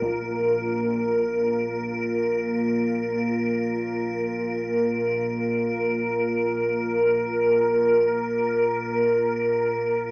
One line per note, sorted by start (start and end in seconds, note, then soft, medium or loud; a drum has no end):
0.00 10.11 A#1 medium
0.00 10.11 A#2 medium
0.00 10.11 A#3 medium
0.00 10.11 F4 medium
0.00 10.11 A#4 medium
0.00 10.11 A#5 medium
0.00 taiko medium